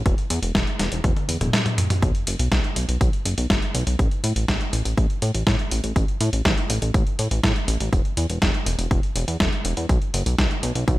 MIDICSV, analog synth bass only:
0, 0, Header, 1, 2, 480
1, 0, Start_track
1, 0, Tempo, 491803
1, 57, Time_signature, 4, 2, 24, 8
1, 10725, End_track
2, 0, Start_track
2, 0, Title_t, "Analog synth bass"
2, 0, Program_c, 0, 38
2, 56, Note_on_c, 0, 28, 105
2, 145, Note_off_c, 0, 28, 0
2, 296, Note_on_c, 0, 40, 90
2, 386, Note_off_c, 0, 40, 0
2, 415, Note_on_c, 0, 28, 78
2, 505, Note_off_c, 0, 28, 0
2, 536, Note_on_c, 0, 28, 101
2, 625, Note_off_c, 0, 28, 0
2, 777, Note_on_c, 0, 28, 92
2, 866, Note_off_c, 0, 28, 0
2, 896, Note_on_c, 0, 28, 77
2, 985, Note_off_c, 0, 28, 0
2, 1017, Note_on_c, 0, 28, 102
2, 1106, Note_off_c, 0, 28, 0
2, 1255, Note_on_c, 0, 40, 83
2, 1345, Note_off_c, 0, 40, 0
2, 1375, Note_on_c, 0, 28, 82
2, 1465, Note_off_c, 0, 28, 0
2, 1976, Note_on_c, 0, 35, 106
2, 2066, Note_off_c, 0, 35, 0
2, 2216, Note_on_c, 0, 30, 87
2, 2306, Note_off_c, 0, 30, 0
2, 2337, Note_on_c, 0, 35, 77
2, 2426, Note_off_c, 0, 35, 0
2, 2456, Note_on_c, 0, 35, 101
2, 2546, Note_off_c, 0, 35, 0
2, 2697, Note_on_c, 0, 35, 94
2, 2786, Note_off_c, 0, 35, 0
2, 2817, Note_on_c, 0, 35, 80
2, 2906, Note_off_c, 0, 35, 0
2, 2936, Note_on_c, 0, 35, 102
2, 3026, Note_off_c, 0, 35, 0
2, 3176, Note_on_c, 0, 30, 89
2, 3266, Note_off_c, 0, 30, 0
2, 3296, Note_on_c, 0, 35, 84
2, 3386, Note_off_c, 0, 35, 0
2, 3416, Note_on_c, 0, 30, 100
2, 3506, Note_off_c, 0, 30, 0
2, 3656, Note_on_c, 0, 35, 98
2, 3746, Note_off_c, 0, 35, 0
2, 3776, Note_on_c, 0, 35, 85
2, 3866, Note_off_c, 0, 35, 0
2, 3897, Note_on_c, 0, 33, 100
2, 3986, Note_off_c, 0, 33, 0
2, 4136, Note_on_c, 0, 45, 96
2, 4225, Note_off_c, 0, 45, 0
2, 4256, Note_on_c, 0, 33, 77
2, 4345, Note_off_c, 0, 33, 0
2, 4376, Note_on_c, 0, 33, 101
2, 4466, Note_off_c, 0, 33, 0
2, 4617, Note_on_c, 0, 33, 91
2, 4706, Note_off_c, 0, 33, 0
2, 4737, Note_on_c, 0, 33, 75
2, 4826, Note_off_c, 0, 33, 0
2, 4856, Note_on_c, 0, 33, 98
2, 4946, Note_off_c, 0, 33, 0
2, 5097, Note_on_c, 0, 45, 91
2, 5186, Note_off_c, 0, 45, 0
2, 5217, Note_on_c, 0, 33, 82
2, 5306, Note_off_c, 0, 33, 0
2, 5336, Note_on_c, 0, 45, 100
2, 5426, Note_off_c, 0, 45, 0
2, 5579, Note_on_c, 0, 33, 92
2, 5667, Note_off_c, 0, 33, 0
2, 5698, Note_on_c, 0, 33, 88
2, 5787, Note_off_c, 0, 33, 0
2, 5817, Note_on_c, 0, 33, 100
2, 5906, Note_off_c, 0, 33, 0
2, 6058, Note_on_c, 0, 45, 97
2, 6146, Note_off_c, 0, 45, 0
2, 6177, Note_on_c, 0, 33, 80
2, 6266, Note_off_c, 0, 33, 0
2, 6297, Note_on_c, 0, 33, 99
2, 6386, Note_off_c, 0, 33, 0
2, 6537, Note_on_c, 0, 33, 99
2, 6626, Note_off_c, 0, 33, 0
2, 6657, Note_on_c, 0, 33, 80
2, 6746, Note_off_c, 0, 33, 0
2, 6777, Note_on_c, 0, 33, 103
2, 6866, Note_off_c, 0, 33, 0
2, 7016, Note_on_c, 0, 45, 87
2, 7105, Note_off_c, 0, 45, 0
2, 7136, Note_on_c, 0, 33, 81
2, 7226, Note_off_c, 0, 33, 0
2, 7256, Note_on_c, 0, 45, 98
2, 7346, Note_off_c, 0, 45, 0
2, 7496, Note_on_c, 0, 33, 93
2, 7586, Note_off_c, 0, 33, 0
2, 7617, Note_on_c, 0, 33, 87
2, 7706, Note_off_c, 0, 33, 0
2, 7737, Note_on_c, 0, 28, 100
2, 7826, Note_off_c, 0, 28, 0
2, 7977, Note_on_c, 0, 40, 90
2, 8066, Note_off_c, 0, 40, 0
2, 8096, Note_on_c, 0, 28, 74
2, 8185, Note_off_c, 0, 28, 0
2, 8216, Note_on_c, 0, 28, 103
2, 8306, Note_off_c, 0, 28, 0
2, 8455, Note_on_c, 0, 28, 92
2, 8545, Note_off_c, 0, 28, 0
2, 8575, Note_on_c, 0, 28, 80
2, 8665, Note_off_c, 0, 28, 0
2, 8696, Note_on_c, 0, 28, 102
2, 8785, Note_off_c, 0, 28, 0
2, 8936, Note_on_c, 0, 28, 86
2, 9026, Note_off_c, 0, 28, 0
2, 9056, Note_on_c, 0, 40, 79
2, 9145, Note_off_c, 0, 40, 0
2, 9176, Note_on_c, 0, 28, 101
2, 9266, Note_off_c, 0, 28, 0
2, 9416, Note_on_c, 0, 28, 96
2, 9506, Note_off_c, 0, 28, 0
2, 9537, Note_on_c, 0, 40, 84
2, 9626, Note_off_c, 0, 40, 0
2, 9656, Note_on_c, 0, 35, 102
2, 9745, Note_off_c, 0, 35, 0
2, 9895, Note_on_c, 0, 30, 94
2, 9985, Note_off_c, 0, 30, 0
2, 10015, Note_on_c, 0, 35, 79
2, 10105, Note_off_c, 0, 35, 0
2, 10136, Note_on_c, 0, 35, 101
2, 10225, Note_off_c, 0, 35, 0
2, 10375, Note_on_c, 0, 35, 95
2, 10465, Note_off_c, 0, 35, 0
2, 10495, Note_on_c, 0, 35, 79
2, 10585, Note_off_c, 0, 35, 0
2, 10616, Note_on_c, 0, 35, 102
2, 10705, Note_off_c, 0, 35, 0
2, 10725, End_track
0, 0, End_of_file